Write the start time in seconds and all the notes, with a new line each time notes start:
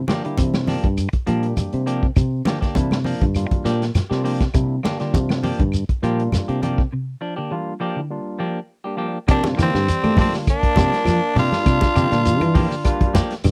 0.08 D3 F3 A#3 D4 G4, snare, closed hi-hat, high conga, claves, shekere
0.24 D3 G3 A#3 D4 E4 G4, closed hi-hat
0.38 C3 E3, kick, closed hi-hat, high conga, shekere
0.54 snare, high conga, claves
0.67 F3 A#3 D4 G4, snare, open hi-hat, high conga, shekere
0.84 G2, muted clean electric guitar stroke, kick, closed hi-hat
0.98 closed hi-hat, claves, shekere
1.13 muted fingered electric bass stroke, kick, closed hi-hat
1.26 A#2 F3 G3 A#3 D4 G4, closed hi-hat, shekere
1.43 closed hi-hat
1.57 closed hi-hat, high conga, low conga, claves, shekere
1.73 C3, closed hi-hat
1.86 F3 A#3 D4 G4, closed hi-hat, shekere
2.03 kick
2.16 C3, kick, closed hi-hat, low conga, claves, shekere
2.45 D3 F3 A#3 D4 G4, snare, closed hi-hat, high conga, claves, shekere
2.61 D3 A#3 D4 G4, kick, snare, closed hi-hat
2.75 C3 E3 G3 A#3 D4 E4, kick, closed hi-hat, high conga, shekere
2.91 snare, closed hi-hat, high conga, claves
3.04 F3 A#3 D4, muted clean electric guitar stroke, open hi-hat, high conga, shekere
3.21 G2 D3 D4 F4, kick, closed hi-hat, low conga
3.35 G3 A#3 D4 F4, closed hi-hat, claves, shekere
3.51 muted fingered electric bass stroke, kick, closed hi-hat, high conga
3.64 A#2 F3 A#3 D4 G4, snare, closed hi-hat, shekere
3.82 snare, closed hi-hat
3.95 snare, closed hi-hat, high conga, low conga, claves, shekere
4.10 C3 G3 A#3 D4 F4 G4, snare
4.24 F3 A#3 D4 G4, open hi-hat, shekere
4.40 kick, snare, closed hi-hat
4.54 C3 G3 A#3 D4 E4, kick, closed hi-hat, low conga, claves, shekere
4.83 D3 A#3 D4 G4, muted clean electric guitar stroke, snare, closed hi-hat, high conga, claves, shekere
4.99 D3 G3 A#3 D4 F4 G4, snare, closed hi-hat
5.14 C3 E3, kick, closed hi-hat, high conga, shekere
5.29 snare, high conga, claves
5.43 F3 A#3 D4 G4, open hi-hat, high conga, shekere
5.59 G2 D3, kick, closed hi-hat, low conga
5.72 closed hi-hat, claves, shekere
5.89 muted fingered electric bass stroke, kick, closed hi-hat
6.03 A#2 F3 G3 A#3 D4 F4 G4, closed hi-hat, shekere
6.20 closed hi-hat
6.32 snare, closed hi-hat, high conga, low conga, claves, shekere
6.48 C3 A#3 D4 G4, closed hi-hat
6.62 F3 A#3 D4 G4, closed hi-hat, high conga, shekere
6.78 kick
6.92 C3
7.21 F3 D4, muted clean electric guitar stroke
7.36 D3 A#3 D4 G4
7.51 E3 G3 A#3 D4 F4
7.80 F3 A#3 D4 G4
7.96 D3 D4 E4
8.10 G3 A#3 D4 F4
8.39 F3 A#3 D4 G4
8.84 G3 A#3 D4 G4
8.97 F3 A#3 D4 G4
9.28 C3 F3 A#3 D4 G4, kick, closed hi-hat, claves, shekere
9.33 A#3
9.44 G3 A#3 D4 F4, snare, closed hi-hat, high conga
9.56 D3 E3 F3 G3 A#3 G4, muted clean electric guitar stroke, snare, closed hi-hat, claves, shekere
9.63 C4
9.74 G2 D3, snare, shekere
9.87 E3, closed hi-hat, shekere
10.03 A3 A#3 D4 G4, closed hi-hat, high conga, claves
10.17 F3 G3 A3 A#3 C4 D4 F4 G4, kick, open hi-hat, high conga, low conga, shekere
10.32 D3, snare, shekere
10.47 A#3 D4, kick, closed hi-hat, claves, shekere
10.63 kick, closed hi-hat
10.76 C3 F3 G3 A#3 D4 F4 G4, kick, snare, closed hi-hat, high conga, low conga, shekere
10.93 snare, closed hi-hat, shekere
11.05 F3, snare, closed hi-hat, high conga, claves, shekere
11.35 C3 A#3 D4 G4, muted clean electric guitar stroke, open hi-hat, low conga, shekere
11.39 F4
11.52 G3 A#3 D4 F4, snare, high conga, shekere
11.65 C3, kick, snare, closed hi-hat, claves, shekere
11.81 kick, snare, closed hi-hat, high conga
11.95 C3 D3 F3 A#3 D4 G4, closed hi-hat, claves, shekere
12.11 A#2 D3 G3 A#3 D4 F4, snare, closed hi-hat, shekere
12.25 E3, closed hi-hat, shekere
12.41 E3, closed hi-hat, high conga, claves
12.54 F3 A#3 D4 G4, muted clean electric guitar stroke, kick, open hi-hat, high conga, low conga, shekere
12.70 D3, shekere
12.84 G3 A#3 D4 F4, kick, closed hi-hat, claves, shekere
13.01 kick, closed hi-hat, high conga
13.13 F3 A#3 D4 G4, kick, snare, closed hi-hat, high conga, shekere
13.30 snare, closed hi-hat, shekere
13.44 G2, closed hi-hat, high conga, low conga, claves, shekere